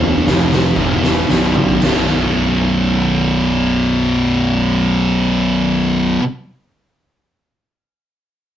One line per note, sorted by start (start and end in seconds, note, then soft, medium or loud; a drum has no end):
0.00 0.24 E1 medium
0.00 0.26 E2 medium
0.00 0.26 B2 medium
0.00 0.26 E3 loud
0.00 mid tom medium
0.27 0.74 F1 medium
0.27 0.76 F2 medium
0.27 0.76 C3 medium
0.27 0.77 F3 medium
0.27 snare medium
0.52 snare medium
0.76 1.25 E1 medium
0.76 1.28 E2 medium
0.76 1.28 B2 medium
0.76 1.28 E3 medium
0.76 kick medium
1.03 snare medium
1.29 1.78 B0 medium
1.29 1.80 B1 medium
1.29 1.81 F#2 medium
1.29 1.81 B2 medium
1.29 snare medium
1.55 floor tom medium
1.82 6.16 B0 medium
1.82 6.19 B1 medium
1.82 6.20 F#2 medium
1.82 6.23 B2 loud
1.82 snare medium
1.82 crash medium